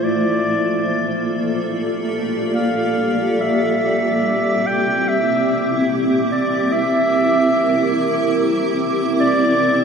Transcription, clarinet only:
0, 0, Header, 1, 2, 480
1, 0, Start_track
1, 0, Tempo, 500000
1, 9449, End_track
2, 0, Start_track
2, 0, Title_t, "Clarinet"
2, 0, Program_c, 0, 71
2, 36, Note_on_c, 0, 74, 100
2, 1641, Note_off_c, 0, 74, 0
2, 2447, Note_on_c, 0, 77, 87
2, 3270, Note_on_c, 0, 76, 93
2, 3285, Note_off_c, 0, 77, 0
2, 4477, Note_on_c, 0, 79, 108
2, 4492, Note_off_c, 0, 76, 0
2, 4882, Note_on_c, 0, 76, 94
2, 4897, Note_off_c, 0, 79, 0
2, 5672, Note_off_c, 0, 76, 0
2, 6063, Note_on_c, 0, 74, 88
2, 6456, Note_on_c, 0, 76, 109
2, 6471, Note_off_c, 0, 74, 0
2, 8040, Note_off_c, 0, 76, 0
2, 8836, Note_on_c, 0, 74, 118
2, 9449, Note_off_c, 0, 74, 0
2, 9449, End_track
0, 0, End_of_file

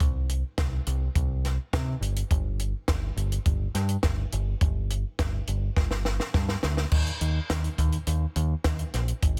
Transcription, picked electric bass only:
0, 0, Header, 1, 2, 480
1, 0, Start_track
1, 0, Tempo, 576369
1, 1, Time_signature, 4, 2, 24, 8
1, 7827, End_track
2, 0, Start_track
2, 0, Title_t, "Picked electric bass"
2, 0, Program_c, 0, 34
2, 5, Note_on_c, 0, 36, 91
2, 348, Note_off_c, 0, 36, 0
2, 483, Note_on_c, 0, 36, 82
2, 655, Note_off_c, 0, 36, 0
2, 723, Note_on_c, 0, 36, 82
2, 894, Note_off_c, 0, 36, 0
2, 960, Note_on_c, 0, 36, 87
2, 1305, Note_off_c, 0, 36, 0
2, 1443, Note_on_c, 0, 48, 86
2, 1615, Note_off_c, 0, 48, 0
2, 1671, Note_on_c, 0, 31, 76
2, 1847, Note_off_c, 0, 31, 0
2, 1922, Note_on_c, 0, 31, 90
2, 2266, Note_off_c, 0, 31, 0
2, 2403, Note_on_c, 0, 31, 86
2, 2574, Note_off_c, 0, 31, 0
2, 2634, Note_on_c, 0, 31, 89
2, 2808, Note_off_c, 0, 31, 0
2, 2881, Note_on_c, 0, 31, 86
2, 3053, Note_off_c, 0, 31, 0
2, 3119, Note_on_c, 0, 43, 83
2, 3292, Note_off_c, 0, 43, 0
2, 3360, Note_on_c, 0, 31, 80
2, 3533, Note_off_c, 0, 31, 0
2, 3603, Note_on_c, 0, 31, 82
2, 3775, Note_off_c, 0, 31, 0
2, 3841, Note_on_c, 0, 31, 92
2, 4186, Note_off_c, 0, 31, 0
2, 4322, Note_on_c, 0, 31, 85
2, 4494, Note_off_c, 0, 31, 0
2, 4560, Note_on_c, 0, 31, 84
2, 4733, Note_off_c, 0, 31, 0
2, 4803, Note_on_c, 0, 31, 89
2, 5146, Note_off_c, 0, 31, 0
2, 5281, Note_on_c, 0, 43, 89
2, 5453, Note_off_c, 0, 43, 0
2, 5525, Note_on_c, 0, 38, 87
2, 5696, Note_off_c, 0, 38, 0
2, 5761, Note_on_c, 0, 39, 88
2, 5906, Note_off_c, 0, 39, 0
2, 6004, Note_on_c, 0, 39, 89
2, 6148, Note_off_c, 0, 39, 0
2, 6243, Note_on_c, 0, 39, 88
2, 6388, Note_off_c, 0, 39, 0
2, 6484, Note_on_c, 0, 39, 92
2, 6628, Note_off_c, 0, 39, 0
2, 6720, Note_on_c, 0, 39, 89
2, 6866, Note_off_c, 0, 39, 0
2, 6961, Note_on_c, 0, 39, 94
2, 7106, Note_off_c, 0, 39, 0
2, 7199, Note_on_c, 0, 39, 88
2, 7345, Note_off_c, 0, 39, 0
2, 7444, Note_on_c, 0, 34, 82
2, 7588, Note_off_c, 0, 34, 0
2, 7682, Note_on_c, 0, 32, 91
2, 7827, Note_off_c, 0, 32, 0
2, 7827, End_track
0, 0, End_of_file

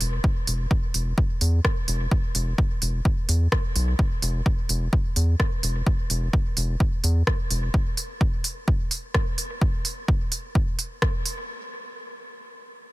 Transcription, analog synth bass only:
0, 0, Header, 1, 2, 480
1, 0, Start_track
1, 0, Tempo, 468750
1, 246, Time_signature, 4, 2, 24, 8
1, 13233, End_track
2, 0, Start_track
2, 0, Title_t, "Analog synth bass"
2, 0, Program_c, 0, 38
2, 5, Note_on_c, 0, 28, 100
2, 199, Note_off_c, 0, 28, 0
2, 485, Note_on_c, 0, 28, 105
2, 679, Note_off_c, 0, 28, 0
2, 966, Note_on_c, 0, 28, 95
2, 1159, Note_off_c, 0, 28, 0
2, 1445, Note_on_c, 0, 40, 87
2, 1639, Note_off_c, 0, 40, 0
2, 1926, Note_on_c, 0, 28, 95
2, 2119, Note_off_c, 0, 28, 0
2, 2405, Note_on_c, 0, 28, 100
2, 2599, Note_off_c, 0, 28, 0
2, 2885, Note_on_c, 0, 28, 93
2, 3078, Note_off_c, 0, 28, 0
2, 3364, Note_on_c, 0, 40, 87
2, 3559, Note_off_c, 0, 40, 0
2, 3846, Note_on_c, 0, 35, 100
2, 4039, Note_off_c, 0, 35, 0
2, 4326, Note_on_c, 0, 28, 106
2, 4519, Note_off_c, 0, 28, 0
2, 4806, Note_on_c, 0, 28, 89
2, 4999, Note_off_c, 0, 28, 0
2, 5286, Note_on_c, 0, 40, 88
2, 5479, Note_off_c, 0, 40, 0
2, 5767, Note_on_c, 0, 28, 95
2, 5960, Note_off_c, 0, 28, 0
2, 6247, Note_on_c, 0, 28, 105
2, 6440, Note_off_c, 0, 28, 0
2, 6727, Note_on_c, 0, 28, 93
2, 6920, Note_off_c, 0, 28, 0
2, 7207, Note_on_c, 0, 40, 90
2, 7400, Note_off_c, 0, 40, 0
2, 7686, Note_on_c, 0, 28, 99
2, 7879, Note_off_c, 0, 28, 0
2, 13233, End_track
0, 0, End_of_file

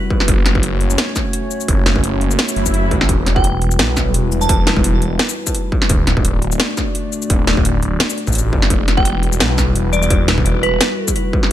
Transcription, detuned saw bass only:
0, 0, Header, 1, 2, 480
1, 0, Start_track
1, 0, Tempo, 350877
1, 383, Time_signature, 4, 2, 24, 8
1, 15761, End_track
2, 0, Start_track
2, 0, Title_t, "Detuned saw bass"
2, 0, Program_c, 0, 39
2, 382, Note_on_c, 0, 30, 106
2, 1329, Note_off_c, 0, 30, 0
2, 2303, Note_on_c, 0, 30, 102
2, 3249, Note_off_c, 0, 30, 0
2, 3504, Note_on_c, 0, 30, 104
2, 3985, Note_on_c, 0, 33, 100
2, 4005, Note_off_c, 0, 30, 0
2, 4207, Note_off_c, 0, 33, 0
2, 4226, Note_on_c, 0, 28, 100
2, 5181, Note_on_c, 0, 35, 99
2, 5202, Note_off_c, 0, 28, 0
2, 5648, Note_off_c, 0, 35, 0
2, 5662, Note_on_c, 0, 28, 101
2, 6129, Note_off_c, 0, 28, 0
2, 6145, Note_on_c, 0, 28, 106
2, 7090, Note_off_c, 0, 28, 0
2, 8065, Note_on_c, 0, 26, 104
2, 9010, Note_off_c, 0, 26, 0
2, 9987, Note_on_c, 0, 26, 104
2, 10931, Note_off_c, 0, 26, 0
2, 11318, Note_on_c, 0, 33, 101
2, 11651, Note_off_c, 0, 33, 0
2, 11667, Note_on_c, 0, 30, 90
2, 11888, Note_off_c, 0, 30, 0
2, 11904, Note_on_c, 0, 28, 102
2, 12862, Note_on_c, 0, 35, 105
2, 12882, Note_off_c, 0, 28, 0
2, 13329, Note_off_c, 0, 35, 0
2, 13339, Note_on_c, 0, 28, 102
2, 13807, Note_off_c, 0, 28, 0
2, 13823, Note_on_c, 0, 28, 103
2, 14769, Note_off_c, 0, 28, 0
2, 15761, End_track
0, 0, End_of_file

